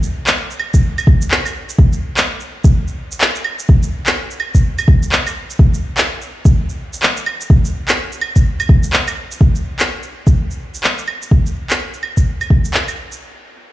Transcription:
0.03 shaker
0.27 clap, shaker
0.51 shaker
0.59 claves
0.74 kick, shaker
0.98 claves, shaker
1.07 kick
1.22 shaker
1.31 clap
1.45 claves, shaker
1.69 shaker
1.79 kick
1.93 shaker
2.17 clap, shaker
2.40 shaker
2.64 kick, shaker
2.88 shaker
3.12 shaker
3.21 clap
3.35 shaker
3.44 claves
3.59 shaker
3.69 kick
3.83 shaker
4.06 clap, shaker
4.31 shaker
4.40 claves
4.55 kick, shaker
4.79 claves, shaker
4.88 kick
5.03 shaker
5.12 clap
5.27 claves, shaker
5.50 shaker
5.59 kick
5.74 shaker
5.97 clap, shaker
6.22 shaker
6.45 kick, shaker
6.69 shaker
6.93 shaker
7.03 clap
7.17 shaker
7.26 claves
7.41 shaker
7.50 kick
7.65 shaker
7.88 clap, shaker
8.12 shaker
8.21 claves
8.36 kick, shaker
8.60 claves, shaker
8.69 kick
8.83 shaker
8.93 clap
9.08 claves, shaker
9.31 shaker
9.41 kick
9.55 shaker
9.79 clap, shaker
10.03 shaker
10.27 kick, shaker
10.51 shaker
10.74 shaker
10.84 clap
10.98 shaker
11.08 claves
11.22 shaker
11.31 kick
11.46 shaker
11.70 clap, shaker
11.94 shaker
12.03 claves
12.17 kick, shaker
12.41 claves, shaker
12.50 kick
12.64 shaker
12.74 clap
12.88 claves, shaker
13.12 shaker

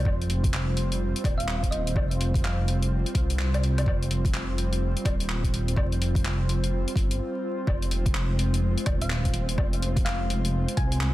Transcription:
Already playing: C4 F4 C5
0.05 F1 G3, kick, low woodblock
0.21 closed hi-hat
0.30 open hi-hat
0.44 kick, closed hi-hat
0.53 clap
0.77 open hi-hat
0.92 closed hi-hat
1.16 closed hi-hat
1.24 D#1, kick, open hi-hat, low woodblock
1.38 F5, closed hi-hat
1.48 clap
1.63 kick, closed hi-hat
1.71 D#5, open hi-hat
1.87 closed hi-hat
1.96 F1, kick, low woodblock
2.11 closed hi-hat
2.21 open hi-hat
2.34 kick, closed hi-hat
2.44 F5, clap
2.68 open hi-hat
2.83 closed hi-hat
3.06 closed hi-hat
3.15 C2, kick, open hi-hat
3.30 closed hi-hat
3.39 clap
3.54 closed hi-hat, low woodblock
3.63 open hi-hat
3.78 closed hi-hat, low woodblock
3.86 F1, kick, low woodblock
4.02 closed hi-hat
4.11 open hi-hat
4.25 kick, closed hi-hat
4.34 clap
4.58 open hi-hat
4.73 closed hi-hat
4.97 closed hi-hat
5.05 D#1, kick, open hi-hat, low woodblock
5.20 closed hi-hat
5.29 clap
5.44 kick, closed hi-hat
5.54 open hi-hat
5.68 closed hi-hat
5.76 F1, kick, low woodblock
5.92 closed hi-hat
6.02 open hi-hat
6.15 kick, closed hi-hat
6.25 clap
6.49 open hi-hat
6.64 closed hi-hat
6.88 closed hi-hat
6.96 G1, kick, open hi-hat
7.11 closed hi-hat
7.66 F1 G#3 C4 C5, kick, low woodblock
7.82 closed hi-hat
7.91 open hi-hat
8.06 kick, closed hi-hat
8.15 clap
8.39 open hi-hat
8.54 closed hi-hat
8.78 closed hi-hat
8.86 D#1, kick, open hi-hat, low woodblock
9.02 F5, closed hi-hat
9.10 clap
9.25 kick, closed hi-hat
9.34 open hi-hat
9.49 closed hi-hat
9.58 F1, kick, low woodblock
9.73 closed hi-hat
9.82 open hi-hat
9.96 kick, closed hi-hat
10.05 F5, clap
10.30 open hi-hat
10.45 closed hi-hat
10.68 closed hi-hat
10.77 C2 G#5, kick, open hi-hat
10.92 closed hi-hat
11.01 clap

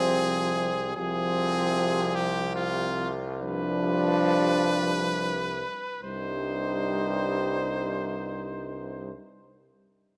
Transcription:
Already playing: C2 C3 F3 C4 G#4
0.96 C2 C3 F3 C4 G#4
2.15 G4
2.56 F4
3.41 G2 F3 D4 B4
6.03 C2 G2 G3 D#4 C5

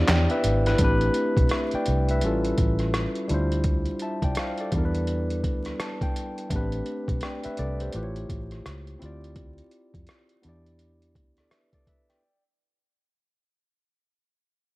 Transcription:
Already playing: B3 D4 E4 G4 D5
0.08 E2 D5 G5, snare, clap, closed hi-hat
0.30 B4 E5, closed hi-hat
0.44 G#1, closed hi-hat
0.66 E4 B4, snare, closed hi-hat
0.78 A1 A3 C4 D4, kick, closed hi-hat
0.83 G4 B4
1.01 closed hi-hat
1.14 closed hi-hat
1.37 B1, kick, closed hi-hat
1.49 E5, cross-stick, closed hi-hat
1.53 B4
1.71 D5 G5, muted fingered electric bass stroke, closed hi-hat
1.86 C2, closed hi-hat
2.09 B4 E5, closed hi-hat
2.21 A1 G3 C#4 E4, closed hi-hat
2.25 F4 A4
2.45 closed hi-hat
2.58 A1, kick, closed hi-hat
2.79 cross-stick, closed hi-hat
2.94 cross-stick, closed hi-hat
3.15 closed hi-hat
3.28 D2 G3 D4 E4, closed hi-hat
3.32 F4 C5
3.52 closed hi-hat
3.64 kick, closed hi-hat
3.86 closed hi-hat
3.99 E5 A5, closed hi-hat
4.22 C2 D5 G5, kick, closed hi-hat
4.35 cross-stick, closed hi-hat
4.39 C5 F5
4.58 A4 D5, closed hi-hat
4.72 E2 G3 B3 D4, kick, closed hi-hat
4.77 E4 A#4
4.85 B4
4.95 closed hi-hat
5.07 closed hi-hat
5.30 closed hi-hat
5.44 D2, kick, closed hi-hat
5.65 cross-stick, closed hi-hat
5.80 A5, cross-stick, closed hi-hat
6.01 G5, kick, closed hi-hat
6.16 closed hi-hat
6.38 closed hi-hat
6.49 A1 A3 B3 D4, kick, closed hi-hat
6.54 C4 G4 B4
6.72 closed hi-hat
6.86 closed hi-hat
7.08 B1, kick, closed hi-hat
7.21 D5 G5, cross-stick, closed hi-hat
7.44 B4 E5, muted fingered electric bass stroke, closed hi-hat
7.57 C2 A4 D5, closed hi-hat
7.80 G4 C5, closed hi-hat
7.93 A1 A3 E4 F4 G4, closed hi-hat
7.97 B4
8.03 C#5
8.16 closed hi-hat
8.29 A1, kick, closed hi-hat
8.51 cross-stick, closed hi-hat
8.66 C#2, cross-stick, closed hi-hat
8.87 closed hi-hat
8.99 D2 C4 E4 F4, closed hi-hat
9.04 G4 D5
9.24 closed hi-hat
9.36 kick, closed hi-hat
9.58 closed hi-hat
9.71 closed hi-hat
9.94 F2, kick, closed hi-hat
10.07 cross-stick, closed hi-hat
10.29 closed hi-hat
10.42 E2 B3 D4 E4, closed hi-hat
10.47 G4 D5
10.66 closed hi-hat
10.79 closed hi-hat
11.02 closed hi-hat
11.15 D2, kick, closed hi-hat
11.37 A4 D5, cross-stick, closed hi-hat
11.51 B4 E5, cross-stick, closed hi-hat
11.73 A4 D5, kick, closed hi-hat
11.87 B4 E5, kick, closed hi-hat
12.09 D5 G5, cross-stick, closed hi-hat

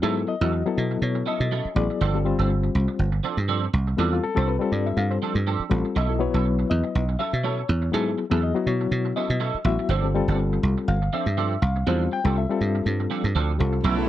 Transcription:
0.02 G#2 F#3 B3 C#4 E4 A4
0.27 D#5, muted clean electric guitar stroke
0.41 E2 F#3 B3 C#4 E4 F#4 A4
0.53 muted clean electric guitar stroke
0.66 F#3 B3 E4 A4, muted clean electric guitar stroke
0.78 B2
0.91 muted clean electric guitar stroke
1.02 B2 C#5
1.15 muted clean electric guitar stroke
1.26 F#3 C#4 E4 A4 D#5
1.40 B2, muted clean electric guitar stroke
1.51 F#3 C#4 E4 A4
1.65 muted slap bass stroke
1.75 A1 F#3 B3 E4 G#4 D5, muted clean electric guitar stroke
1.90 muted clean electric guitar stroke
2.01 G1 F3 C4 D4 A4
2.14 G3 C4 F4 A4
2.25 G3 C4 F4 C5, muted clean electric guitar stroke
2.39 G1 C4 D4 A4
2.50 muted clean electric guitar stroke
2.63 muted clean electric guitar stroke
2.75 C2
2.88 muted clean electric guitar stroke
2.99 G1
3.12 muted clean electric guitar stroke
3.23 F3 C4 D4 A4
3.37 G2, muted clean electric guitar stroke
3.48 F3 C4 D4 A4
3.73 C2, muted clean electric guitar stroke
3.87 muted clean electric guitar stroke
3.97 E2 F3 G3 C4 D4 F4 A4
4.13 F4
4.24 A4, muted clean electric guitar stroke
4.35 C2 G3 C4 D4 F4 A4 C5
4.48 B4, muted clean electric guitar stroke
4.59 G3 C4 F4 A4 C5, muted clean electric guitar stroke
4.72 G2 D5
4.86 E5, muted clean electric guitar stroke
4.97 G2 F5
5.10 C5, muted clean electric guitar stroke
5.22 F3 C4 D4 A4
5.35 G2, muted clean electric guitar stroke
5.47 F3 C4 D4 A4
5.59 muted slap bass stroke
5.69 A1 G3 C4 F4 A4, muted clean electric guitar stroke
5.85 muted clean electric guitar stroke
5.96 B1 F#3 C#4 E4 A4 D#5
6.08 F#3 B3 E4 A4
6.19 F#3 B3 E4 B4 C#5, muted clean electric guitar stroke
6.34 B1 C#4 E4 A4
6.46 muted clean electric guitar stroke
6.59 muted clean electric guitar stroke
6.70 E2 D#5
6.84 muted clean electric guitar stroke
6.95 B1
7.09 muted clean electric guitar stroke
7.19 F#3 C#4 E4 A4 E5
7.33 B2, muted clean electric guitar stroke
7.44 F#3 C#4 E4 A4 C#5
7.69 E2, muted clean electric guitar stroke
7.82 muted clean electric guitar stroke
7.92 G#2 F#3 B3 C#4 E4 G#4 A4
8.18 muted clean electric guitar stroke
8.30 E2 F#3 B3 C#4 E4 G#4 A4
8.42 D#5, muted clean electric guitar stroke
8.54 F#3 B3 E4 F#4, muted clean electric guitar stroke
8.67 B2 C#5
8.81 muted clean electric guitar stroke
8.91 B2
9.05 muted clean electric guitar stroke
9.16 F#3 C#4 E4 A4 D#5
9.30 B2, muted clean electric guitar stroke
9.40 F#3 C#4 E4 A4
9.54 muted slap bass stroke
9.65 A1 F#3 B3 E4 F#4 E5, muted clean electric guitar stroke
9.79 muted clean electric guitar stroke
9.89 G1 F3 C4 D4 A4 C5
10.03 G3 C4 F4 A4
10.14 G3 C4 F4 A4, muted clean electric guitar stroke
10.28 G1 C4 D4 A4
10.39 muted clean electric guitar stroke
10.53 muted clean electric guitar stroke
10.63 C2
10.78 muted clean electric guitar stroke
10.88 G1 F5
11.02 muted clean electric guitar stroke
11.13 F3 C4 D4 A4 E5
11.26 G2, muted clean electric guitar stroke
11.37 F3 C4 D4 A4
11.62 C2 F5, muted clean electric guitar stroke
11.76 muted clean electric guitar stroke
11.87 E2 F3 G3 C4 D4 F4 A4 C5
12.12 G5, muted clean electric guitar stroke
12.24 C2 G3 C4 D4 F4 A4
12.37 E5, muted clean electric guitar stroke
12.49 G3 C4 F4 A4, muted clean electric guitar stroke
12.61 G2
12.75 muted clean electric guitar stroke
12.86 G2
13.00 muted clean electric guitar stroke
13.10 F3 C4 D4 A4
13.24 G2, muted clean electric guitar stroke
13.35 D2 F3 C4 D4 A4
13.58 C2 G3 C4 F4 A4, muted clean electric guitar stroke
13.73 muted clean electric guitar stroke
13.84 B1 C#3 F#3 A3 B3 C#4 E4 A4
13.96 F#3 B3 E4 A4

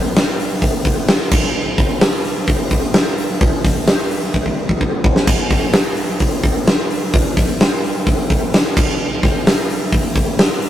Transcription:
0.16 snare, open hi-hat
0.40 open hi-hat
0.62 kick, open hi-hat
0.85 kick, open hi-hat
1.08 snare, open hi-hat
1.31 kick, crash
1.44 snare
1.78 kick, open hi-hat
2.01 snare, open hi-hat
2.24 open hi-hat
2.47 kick, open hi-hat
2.70 kick, open hi-hat
2.94 snare, open hi-hat
3.18 open hi-hat
3.41 kick, open hi-hat
3.65 kick, snare, open hi-hat
3.87 snare, open hi-hat
4.11 open hi-hat
4.34 kick
4.46 kick
4.69 kick
4.81 kick
5.04 kick
5.16 snare
5.27 kick, splash, crash
5.50 kick, open hi-hat
5.73 snare, open hi-hat
5.97 open hi-hat
6.20 kick, open hi-hat
6.43 kick, open hi-hat
6.67 snare, open hi-hat
6.91 open hi-hat
7.14 kick, open hi-hat
7.37 kick, snare, open hi-hat
7.61 snare, open hi-hat
7.84 open hi-hat
8.07 kick, open hi-hat
8.30 kick, open hi-hat
8.54 snare, open hi-hat
8.77 kick, crash
8.90 snare
9.23 kick, snare, open hi-hat
9.47 snare, open hi-hat
9.70 open hi-hat
9.92 kick, open hi-hat
10.16 kick, open hi-hat
10.39 snare, open hi-hat
10.62 open hi-hat

